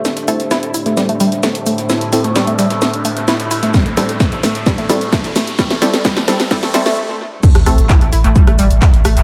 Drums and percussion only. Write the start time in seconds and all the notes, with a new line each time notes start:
0.05 snare, closed hi-hat, shaker
0.17 snare, closed hi-hat, shaker
0.28 open hi-hat, shaker
0.40 closed hi-hat, shaker
0.51 snare, closed hi-hat, shaker
0.63 closed hi-hat, shaker
0.74 open hi-hat, shaker
0.86 closed hi-hat, shaker
0.97 snare, closed hi-hat, shaker
1.09 closed hi-hat, shaker
1.20 open hi-hat, shaker
1.32 closed hi-hat, shaker
1.43 snare, closed hi-hat, shaker
1.55 closed hi-hat, shaker
1.66 open hi-hat, shaker
1.78 closed hi-hat, shaker
1.89 snare, closed hi-hat, shaker
2.01 snare, closed hi-hat, shaker
2.13 snare, open hi-hat, shaker
2.24 closed hi-hat, shaker
2.36 snare, closed hi-hat, shaker
2.47 closed hi-hat, shaker
2.59 snare, open hi-hat, shaker
2.70 snare, closed hi-hat, shaker
2.82 snare, closed hi-hat, shaker
2.94 closed hi-hat, shaker
3.05 open hi-hat, shaker
3.17 closed hi-hat, shaker
3.28 snare, closed hi-hat, shaker
3.40 snare, closed hi-hat, shaker
3.51 snare, open hi-hat, shaker
3.63 snare, closed hi-hat, shaker
3.74 kick, snare, closed hi-hat, shaker
3.86 snare, closed hi-hat, shaker
3.97 snare, open hi-hat, shaker
4.09 closed hi-hat, shaker
4.20 kick, snare, closed hi-hat, shaker
4.32 closed hi-hat, shaker
4.43 snare, open hi-hat, shaker
4.55 closed hi-hat, shaker
4.66 kick, snare, closed hi-hat, shaker
4.78 closed hi-hat, shaker
4.89 snare, open hi-hat, shaker
5.01 closed hi-hat, shaker
5.13 kick, snare, closed hi-hat, shaker
5.24 closed hi-hat, shaker
5.36 snare, open hi-hat, shaker
5.47 closed hi-hat, shaker
5.59 kick, snare, closed hi-hat, shaker
5.70 snare, closed hi-hat, shaker
5.82 snare, open hi-hat, shaker
5.94 snare, closed hi-hat, shaker
6.05 kick, snare, closed hi-hat, shaker
6.17 snare, closed hi-hat, shaker
6.28 snare, open hi-hat, shaker
6.40 snare, closed hi-hat, shaker
6.51 kick, snare, closed hi-hat, shaker
6.63 snare, closed hi-hat, shaker
6.74 snare, open hi-hat, shaker
6.86 snare, closed hi-hat, shaker
7.43 kick, closed hi-hat, crash, shaker
7.55 cross-stick, snare, closed hi-hat
7.66 cross-stick, open hi-hat, shaker
7.78 closed hi-hat, shaker
7.89 kick, snare, clap, closed hi-hat, shaker
8.01 closed hi-hat
8.13 open hi-hat, shaker
8.24 closed hi-hat, shaker
8.36 kick, closed hi-hat, shaker
8.47 cross-stick, closed hi-hat
8.59 open hi-hat, shaker
8.71 closed hi-hat, shaker
8.82 kick, snare, clap, closed hi-hat, shaker
8.94 closed hi-hat
9.05 cross-stick, open hi-hat, shaker
9.17 closed hi-hat, shaker